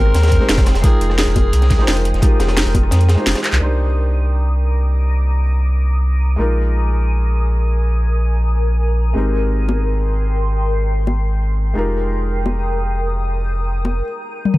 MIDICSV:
0, 0, Header, 1, 6, 480
1, 0, Start_track
1, 0, Key_signature, -3, "minor"
1, 0, Tempo, 346821
1, 1161, Time_signature, 4, 2, 24, 8
1, 20180, End_track
2, 0, Start_track
2, 0, Title_t, "Ambient pad"
2, 0, Program_c, 0, 92
2, 0, Note_on_c, 0, 70, 82
2, 0, Note_on_c, 0, 79, 73
2, 0, Note_on_c, 0, 84, 88
2, 869, Note_off_c, 0, 70, 0
2, 885, Note_off_c, 0, 84, 0
2, 926, Note_on_c, 0, 87, 91
2, 927, Note_on_c, 0, 70, 80
2, 4946, Note_off_c, 0, 79, 0
2, 4963, Note_off_c, 0, 70, 0
2, 4963, Note_off_c, 0, 87, 0
2, 5000, Note_on_c, 0, 82, 64
2, 5000, Note_on_c, 0, 86, 73
2, 5000, Note_on_c, 0, 87, 79
2, 8802, Note_off_c, 0, 82, 0
2, 8802, Note_off_c, 0, 86, 0
2, 8834, Note_on_c, 0, 70, 76
2, 8837, Note_on_c, 0, 80, 70
2, 12625, Note_off_c, 0, 87, 0
2, 12641, Note_off_c, 0, 80, 0
2, 12676, Note_on_c, 0, 79, 69
2, 12678, Note_on_c, 0, 84, 82
2, 16244, Note_off_c, 0, 84, 0
2, 16279, Note_on_c, 0, 87, 83
2, 20180, Note_off_c, 0, 70, 0
2, 20180, Note_off_c, 0, 79, 0
2, 20180, Note_off_c, 0, 87, 0
2, 20180, End_track
3, 0, Start_track
3, 0, Title_t, "Alto saxophone"
3, 0, Program_c, 1, 65
3, 0, Note_on_c, 1, 70, 110
3, 923, Note_off_c, 1, 70, 0
3, 1159, Note_on_c, 1, 68, 98
3, 1607, Note_off_c, 1, 68, 0
3, 1642, Note_on_c, 1, 68, 94
3, 3026, Note_off_c, 1, 68, 0
3, 20180, End_track
4, 0, Start_track
4, 0, Title_t, "Felt piano"
4, 0, Program_c, 2, 0
4, 0, Control_c, 2, 64, 127
4, 0, Note_on_c, 2, 56, 89
4, 0, Note_on_c, 2, 60, 84
4, 0, Note_on_c, 2, 63, 82
4, 0, Note_on_c, 2, 67, 82
4, 0, Note_on_c, 2, 70, 99
4, 0, Note_on_c, 2, 72, 82
4, 395, Note_off_c, 2, 56, 0
4, 402, Note_off_c, 2, 60, 0
4, 410, Note_off_c, 2, 63, 0
4, 419, Note_off_c, 2, 67, 0
4, 428, Note_off_c, 2, 70, 0
4, 540, Note_on_c, 2, 56, 77
4, 549, Note_on_c, 2, 60, 69
4, 557, Note_on_c, 2, 63, 71
4, 564, Note_on_c, 2, 67, 68
4, 572, Note_off_c, 2, 72, 0
4, 572, Note_on_c, 2, 72, 85
4, 895, Note_off_c, 2, 56, 0
4, 900, Note_off_c, 2, 60, 0
4, 904, Note_off_c, 2, 63, 0
4, 908, Note_off_c, 2, 67, 0
4, 912, Note_off_c, 2, 72, 0
4, 936, Control_c, 2, 64, 0
4, 1125, Note_on_c, 2, 56, 87
4, 1143, Note_on_c, 2, 63, 85
4, 1159, Note_on_c, 2, 65, 85
4, 1175, Note_on_c, 2, 79, 82
4, 1191, Note_on_c, 2, 70, 101
4, 1206, Control_c, 2, 64, 127
4, 2314, Note_off_c, 2, 56, 0
4, 2324, Note_off_c, 2, 63, 0
4, 2332, Note_off_c, 2, 65, 0
4, 2340, Note_off_c, 2, 79, 0
4, 2348, Note_off_c, 2, 70, 0
4, 2450, Note_on_c, 2, 56, 73
4, 2466, Note_on_c, 2, 63, 71
4, 2483, Note_on_c, 2, 65, 73
4, 2498, Note_on_c, 2, 79, 72
4, 2516, Note_on_c, 2, 72, 87
4, 3025, Note_off_c, 2, 56, 0
4, 3041, Note_off_c, 2, 63, 0
4, 3046, Note_on_c, 2, 56, 91
4, 3053, Note_off_c, 2, 65, 0
4, 3060, Note_off_c, 2, 79, 0
4, 3062, Note_on_c, 2, 63, 83
4, 3069, Note_off_c, 2, 72, 0
4, 3078, Note_on_c, 2, 65, 83
4, 3094, Note_on_c, 2, 67, 81
4, 3113, Note_on_c, 2, 70, 102
4, 4235, Note_off_c, 2, 56, 0
4, 4243, Note_off_c, 2, 63, 0
4, 4251, Note_off_c, 2, 65, 0
4, 4259, Note_off_c, 2, 67, 0
4, 4269, Note_off_c, 2, 70, 0
4, 4364, Note_on_c, 2, 56, 76
4, 4379, Note_on_c, 2, 63, 67
4, 4398, Note_on_c, 2, 65, 67
4, 4414, Note_on_c, 2, 67, 68
4, 4432, Note_on_c, 2, 72, 82
4, 4953, Note_off_c, 2, 56, 0
4, 4961, Note_off_c, 2, 63, 0
4, 4962, Note_on_c, 2, 58, 66
4, 4970, Note_off_c, 2, 65, 0
4, 4979, Note_off_c, 2, 67, 0
4, 4979, Note_on_c, 2, 62, 61
4, 4987, Note_off_c, 2, 72, 0
4, 4997, Note_on_c, 2, 63, 60
4, 5013, Note_on_c, 2, 67, 63
4, 5021, Control_c, 2, 64, 0
4, 5031, Note_on_c, 2, 72, 73
4, 5265, Control_c, 2, 64, 127
4, 8793, Note_off_c, 2, 58, 0
4, 8802, Note_off_c, 2, 62, 0
4, 8806, Note_on_c, 2, 56, 68
4, 8811, Note_off_c, 2, 63, 0
4, 8819, Note_off_c, 2, 67, 0
4, 8822, Note_on_c, 2, 58, 62
4, 8828, Note_off_c, 2, 72, 0
4, 8837, Note_on_c, 2, 63, 66
4, 8855, Note_on_c, 2, 65, 65
4, 8859, Control_c, 2, 64, 0
4, 8872, Note_on_c, 2, 70, 76
4, 9101, Control_c, 2, 64, 127
4, 12622, Note_off_c, 2, 56, 0
4, 12643, Note_off_c, 2, 58, 0
4, 12643, Note_on_c, 2, 56, 67
4, 12650, Note_off_c, 2, 63, 0
4, 12659, Note_off_c, 2, 65, 0
4, 12660, Note_on_c, 2, 60, 63
4, 12668, Note_off_c, 2, 70, 0
4, 12677, Note_on_c, 2, 63, 62
4, 12693, Note_on_c, 2, 67, 61
4, 12696, Control_c, 2, 64, 0
4, 12709, Note_on_c, 2, 70, 76
4, 12912, Control_c, 2, 64, 127
4, 16224, Note_off_c, 2, 56, 0
4, 16242, Note_off_c, 2, 60, 0
4, 16242, Note_off_c, 2, 63, 0
4, 16244, Note_on_c, 2, 56, 66
4, 16259, Note_off_c, 2, 67, 0
4, 16263, Note_on_c, 2, 63, 62
4, 16266, Note_off_c, 2, 70, 0
4, 16277, Note_on_c, 2, 65, 65
4, 16295, Note_on_c, 2, 67, 67
4, 16300, Control_c, 2, 64, 0
4, 16312, Note_on_c, 2, 70, 78
4, 16536, Control_c, 2, 64, 127
4, 19383, Note_off_c, 2, 56, 0
4, 19392, Note_off_c, 2, 63, 0
4, 19399, Note_off_c, 2, 65, 0
4, 19408, Note_off_c, 2, 67, 0
4, 19417, Note_off_c, 2, 70, 0
4, 20180, End_track
5, 0, Start_track
5, 0, Title_t, "Sub bass"
5, 0, Program_c, 3, 38
5, 0, Note_on_c, 3, 32, 99
5, 179, Note_off_c, 3, 32, 0
5, 197, Note_on_c, 3, 39, 85
5, 541, Note_off_c, 3, 39, 0
5, 674, Note_on_c, 3, 29, 101
5, 1020, Note_off_c, 3, 29, 0
5, 1036, Note_on_c, 3, 29, 96
5, 1146, Note_off_c, 3, 29, 0
5, 1398, Note_on_c, 3, 29, 105
5, 1741, Note_off_c, 3, 29, 0
5, 1759, Note_on_c, 3, 29, 103
5, 2100, Note_off_c, 3, 29, 0
5, 2117, Note_on_c, 3, 36, 87
5, 2461, Note_off_c, 3, 36, 0
5, 2597, Note_on_c, 3, 29, 102
5, 2941, Note_off_c, 3, 29, 0
5, 2959, Note_on_c, 3, 29, 98
5, 3067, Note_off_c, 3, 29, 0
5, 3315, Note_on_c, 3, 29, 104
5, 3660, Note_off_c, 3, 29, 0
5, 3679, Note_on_c, 3, 29, 101
5, 4020, Note_off_c, 3, 29, 0
5, 4035, Note_on_c, 3, 41, 106
5, 4380, Note_off_c, 3, 41, 0
5, 4518, Note_on_c, 3, 29, 90
5, 4629, Note_off_c, 3, 29, 0
5, 4878, Note_on_c, 3, 36, 81
5, 4987, Note_off_c, 3, 36, 0
5, 4995, Note_on_c, 3, 36, 81
5, 8814, Note_off_c, 3, 36, 0
5, 8838, Note_on_c, 3, 34, 84
5, 12656, Note_off_c, 3, 34, 0
5, 12673, Note_on_c, 3, 32, 81
5, 16254, Note_off_c, 3, 32, 0
5, 16277, Note_on_c, 3, 29, 87
5, 19399, Note_off_c, 3, 29, 0
5, 20180, End_track
6, 0, Start_track
6, 0, Title_t, "Drums"
6, 81, Note_on_c, 9, 37, 33
6, 201, Note_on_c, 9, 42, 91
6, 209, Note_on_c, 9, 38, 100
6, 215, Note_off_c, 9, 42, 0
6, 215, Note_on_c, 9, 42, 90
6, 220, Note_off_c, 9, 37, 0
6, 320, Note_off_c, 9, 38, 0
6, 320, Note_on_c, 9, 38, 94
6, 321, Note_off_c, 9, 42, 0
6, 321, Note_on_c, 9, 42, 75
6, 324, Note_off_c, 9, 42, 0
6, 324, Note_on_c, 9, 42, 38
6, 380, Note_off_c, 9, 42, 0
6, 380, Note_on_c, 9, 42, 76
6, 383, Note_off_c, 9, 38, 0
6, 383, Note_on_c, 9, 38, 85
6, 432, Note_off_c, 9, 42, 0
6, 432, Note_on_c, 9, 42, 75
6, 441, Note_on_c, 9, 36, 61
6, 442, Note_off_c, 9, 42, 0
6, 442, Note_on_c, 9, 42, 65
6, 521, Note_off_c, 9, 38, 0
6, 562, Note_on_c, 9, 38, 34
6, 579, Note_off_c, 9, 36, 0
6, 581, Note_off_c, 9, 42, 0
6, 677, Note_on_c, 9, 42, 75
6, 682, Note_off_c, 9, 38, 0
6, 682, Note_off_c, 9, 42, 0
6, 682, Note_on_c, 9, 38, 119
6, 682, Note_on_c, 9, 42, 93
6, 688, Note_off_c, 9, 38, 0
6, 688, Note_on_c, 9, 38, 110
6, 796, Note_off_c, 9, 38, 0
6, 796, Note_on_c, 9, 38, 114
6, 801, Note_on_c, 9, 36, 100
6, 804, Note_off_c, 9, 42, 0
6, 804, Note_on_c, 9, 37, 55
6, 804, Note_on_c, 9, 42, 36
6, 805, Note_off_c, 9, 42, 0
6, 805, Note_on_c, 9, 42, 80
6, 912, Note_off_c, 9, 42, 0
6, 912, Note_on_c, 9, 42, 94
6, 922, Note_off_c, 9, 37, 0
6, 922, Note_off_c, 9, 42, 0
6, 922, Note_on_c, 9, 37, 55
6, 922, Note_on_c, 9, 42, 66
6, 926, Note_off_c, 9, 38, 0
6, 926, Note_on_c, 9, 38, 120
6, 939, Note_off_c, 9, 36, 0
6, 1034, Note_off_c, 9, 38, 0
6, 1034, Note_on_c, 9, 38, 100
6, 1042, Note_off_c, 9, 42, 0
6, 1042, Note_on_c, 9, 42, 35
6, 1047, Note_off_c, 9, 42, 0
6, 1047, Note_on_c, 9, 42, 76
6, 1061, Note_off_c, 9, 37, 0
6, 1159, Note_off_c, 9, 42, 0
6, 1159, Note_on_c, 9, 42, 98
6, 1160, Note_on_c, 9, 36, 118
6, 1172, Note_off_c, 9, 38, 0
6, 1172, Note_off_c, 9, 42, 0
6, 1172, Note_on_c, 9, 42, 91
6, 1298, Note_off_c, 9, 36, 0
6, 1310, Note_off_c, 9, 42, 0
6, 1400, Note_on_c, 9, 42, 64
6, 1401, Note_off_c, 9, 42, 0
6, 1401, Note_on_c, 9, 42, 69
6, 1520, Note_on_c, 9, 38, 45
6, 1521, Note_on_c, 9, 37, 48
6, 1539, Note_off_c, 9, 42, 0
6, 1638, Note_on_c, 9, 42, 89
6, 1639, Note_off_c, 9, 38, 0
6, 1639, Note_off_c, 9, 42, 0
6, 1639, Note_on_c, 9, 38, 115
6, 1639, Note_on_c, 9, 42, 93
6, 1643, Note_off_c, 9, 38, 0
6, 1643, Note_on_c, 9, 38, 104
6, 1659, Note_off_c, 9, 37, 0
6, 1778, Note_off_c, 9, 42, 0
6, 1781, Note_off_c, 9, 38, 0
6, 1879, Note_on_c, 9, 42, 67
6, 1880, Note_on_c, 9, 36, 60
6, 1882, Note_on_c, 9, 60, 61
6, 1885, Note_off_c, 9, 42, 0
6, 1885, Note_on_c, 9, 42, 68
6, 2019, Note_off_c, 9, 36, 0
6, 2021, Note_off_c, 9, 60, 0
6, 2024, Note_off_c, 9, 42, 0
6, 2116, Note_on_c, 9, 42, 100
6, 2120, Note_off_c, 9, 42, 0
6, 2120, Note_on_c, 9, 42, 95
6, 2240, Note_on_c, 9, 38, 57
6, 2243, Note_off_c, 9, 42, 0
6, 2243, Note_on_c, 9, 42, 40
6, 2360, Note_off_c, 9, 42, 0
6, 2360, Note_on_c, 9, 36, 104
6, 2360, Note_on_c, 9, 42, 70
6, 2362, Note_off_c, 9, 38, 0
6, 2362, Note_off_c, 9, 42, 0
6, 2362, Note_on_c, 9, 38, 35
6, 2362, Note_on_c, 9, 42, 68
6, 2480, Note_off_c, 9, 38, 0
6, 2480, Note_on_c, 9, 38, 51
6, 2499, Note_off_c, 9, 36, 0
6, 2500, Note_off_c, 9, 42, 0
6, 2597, Note_off_c, 9, 38, 0
6, 2597, Note_on_c, 9, 38, 117
6, 2602, Note_off_c, 9, 38, 0
6, 2602, Note_on_c, 9, 38, 118
6, 2602, Note_on_c, 9, 42, 100
6, 2603, Note_off_c, 9, 42, 0
6, 2603, Note_on_c, 9, 42, 90
6, 2723, Note_off_c, 9, 42, 0
6, 2723, Note_on_c, 9, 42, 39
6, 2740, Note_off_c, 9, 38, 0
6, 2840, Note_off_c, 9, 42, 0
6, 2840, Note_on_c, 9, 42, 77
6, 2841, Note_off_c, 9, 42, 0
6, 2841, Note_on_c, 9, 42, 70
6, 2964, Note_off_c, 9, 42, 0
6, 2964, Note_on_c, 9, 38, 35
6, 2964, Note_on_c, 9, 42, 37
6, 3072, Note_off_c, 9, 42, 0
6, 3072, Note_on_c, 9, 42, 96
6, 3081, Note_on_c, 9, 36, 113
6, 3082, Note_off_c, 9, 42, 0
6, 3082, Note_on_c, 9, 42, 96
6, 3102, Note_off_c, 9, 38, 0
6, 3219, Note_off_c, 9, 36, 0
6, 3221, Note_off_c, 9, 42, 0
6, 3317, Note_on_c, 9, 38, 113
6, 3323, Note_on_c, 9, 42, 71
6, 3327, Note_off_c, 9, 42, 0
6, 3327, Note_on_c, 9, 42, 78
6, 3436, Note_off_c, 9, 38, 0
6, 3436, Note_on_c, 9, 38, 101
6, 3438, Note_off_c, 9, 42, 0
6, 3438, Note_on_c, 9, 42, 83
6, 3444, Note_on_c, 9, 37, 51
6, 3554, Note_off_c, 9, 38, 0
6, 3554, Note_on_c, 9, 38, 115
6, 3561, Note_off_c, 9, 38, 0
6, 3561, Note_off_c, 9, 42, 0
6, 3561, Note_on_c, 9, 38, 113
6, 3561, Note_on_c, 9, 42, 97
6, 3564, Note_on_c, 9, 46, 79
6, 3583, Note_off_c, 9, 37, 0
6, 3699, Note_off_c, 9, 38, 0
6, 3699, Note_off_c, 9, 42, 0
6, 3703, Note_off_c, 9, 46, 0
6, 3798, Note_on_c, 9, 60, 62
6, 3801, Note_on_c, 9, 36, 60
6, 3802, Note_on_c, 9, 42, 68
6, 3803, Note_off_c, 9, 42, 0
6, 3803, Note_on_c, 9, 42, 65
6, 3921, Note_on_c, 9, 37, 34
6, 3937, Note_off_c, 9, 60, 0
6, 3939, Note_off_c, 9, 36, 0
6, 3941, Note_off_c, 9, 42, 0
6, 4030, Note_on_c, 9, 38, 116
6, 4035, Note_on_c, 9, 42, 78
6, 4041, Note_off_c, 9, 42, 0
6, 4041, Note_on_c, 9, 42, 99
6, 4059, Note_off_c, 9, 37, 0
6, 4155, Note_off_c, 9, 42, 0
6, 4155, Note_on_c, 9, 42, 42
6, 4163, Note_off_c, 9, 42, 0
6, 4163, Note_on_c, 9, 42, 39
6, 4168, Note_off_c, 9, 38, 0
6, 4271, Note_on_c, 9, 38, 116
6, 4281, Note_off_c, 9, 42, 0
6, 4281, Note_on_c, 9, 42, 67
6, 4288, Note_off_c, 9, 42, 0
6, 4288, Note_on_c, 9, 42, 75
6, 4394, Note_off_c, 9, 42, 0
6, 4394, Note_on_c, 9, 42, 37
6, 4410, Note_off_c, 9, 38, 0
6, 4518, Note_off_c, 9, 42, 0
6, 4518, Note_on_c, 9, 42, 67
6, 4521, Note_off_c, 9, 42, 0
6, 4521, Note_on_c, 9, 38, 121
6, 4521, Note_on_c, 9, 42, 101
6, 4642, Note_off_c, 9, 42, 0
6, 4642, Note_on_c, 9, 37, 55
6, 4642, Note_on_c, 9, 42, 40
6, 4647, Note_off_c, 9, 42, 0
6, 4647, Note_on_c, 9, 42, 76
6, 4649, Note_off_c, 9, 38, 0
6, 4649, Note_on_c, 9, 38, 109
6, 4761, Note_off_c, 9, 42, 0
6, 4761, Note_on_c, 9, 42, 44
6, 4762, Note_off_c, 9, 42, 0
6, 4762, Note_on_c, 9, 39, 89
6, 4762, Note_on_c, 9, 42, 70
6, 4780, Note_off_c, 9, 37, 0
6, 4787, Note_off_c, 9, 38, 0
6, 4880, Note_off_c, 9, 39, 0
6, 4880, Note_off_c, 9, 42, 0
6, 4880, Note_on_c, 9, 39, 99
6, 4880, Note_on_c, 9, 42, 38
6, 4887, Note_off_c, 9, 42, 0
6, 4887, Note_on_c, 9, 42, 60
6, 5018, Note_off_c, 9, 39, 0
6, 5025, Note_off_c, 9, 42, 0
6, 13406, Note_on_c, 9, 60, 61
6, 13544, Note_off_c, 9, 60, 0
6, 15323, Note_on_c, 9, 60, 54
6, 15462, Note_off_c, 9, 60, 0
6, 17241, Note_on_c, 9, 60, 57
6, 17379, Note_off_c, 9, 60, 0
6, 19166, Note_on_c, 9, 60, 58
6, 19305, Note_off_c, 9, 60, 0
6, 20003, Note_on_c, 9, 48, 47
6, 20122, Note_on_c, 9, 47, 70
6, 20142, Note_off_c, 9, 48, 0
6, 20180, Note_off_c, 9, 47, 0
6, 20180, End_track
0, 0, End_of_file